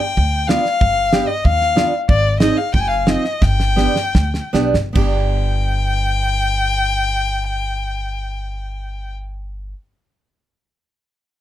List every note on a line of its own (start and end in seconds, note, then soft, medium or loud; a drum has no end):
0.00 0.49 G5 loud
0.17 0.56 D2 medium
0.17 kick medium
0.47 0.64 B3 medium
0.47 0.65 D4 medium
0.47 0.65 F4 medium
0.47 1.28 F5 loud
0.47 snare medium
0.65 snare soft
0.81 1.19 G1 medium
0.81 kick medium
1.13 1.29 B3 medium
1.13 1.29 D4 medium
1.13 1.29 G4 medium
1.13 snare medium
1.27 1.46 D#5 medium
1.44 1.83 D#2 loud
1.44 1.92 F5 loud
1.44 kick medium
1.61 snare soft
1.76 1.92 B3 medium
1.76 1.92 D4 medium
1.76 1.93 F4 medium
1.76 snare medium
2.09 2.48 G#1 loud
2.09 2.39 D5 loud
2.09 kick loud
2.40 2.57 C4 medium
2.40 2.57 D#4 medium
2.40 2.57 G#4 medium
2.40 2.59 D#5 medium
2.40 snare medium
2.57 2.73 F5 medium
2.74 3.15 F#1 loud
2.74 2.81 G5 loud
2.74 kick medium
2.79 2.90 G5 loud
2.79 2.84 G#5 medium
2.90 3.10 F5 medium
3.07 3.24 C4 medium
3.07 3.24 D#4 medium
3.07 3.25 F4 medium
3.07 3.44 D#5 medium
3.07 snare medium
3.24 snare soft
3.42 3.86 G1 medium
3.42 4.54 G5 loud
3.42 kick loud
3.42 snare medium
3.60 snare medium
3.76 3.95 B3 medium
3.76 3.95 D4 medium
3.76 3.96 G4 medium
3.76 snare medium
3.96 snare medium
4.15 4.38 D2 loud
4.15 kick medium
4.15 snare medium
4.34 snare medium
4.53 4.72 B1 medium
4.53 4.74 B3 medium
4.53 4.74 D4 medium
4.53 4.74 G4 medium
4.53 snare medium
4.74 4.93 G1 medium
4.74 snare medium
4.93 9.72 G1 medium
4.93 9.69 B3 medium
4.93 9.71 D4 medium
4.93 9.12 G5 loud
4.93 kick medium
4.93 crash medium
4.97 9.73 G4 medium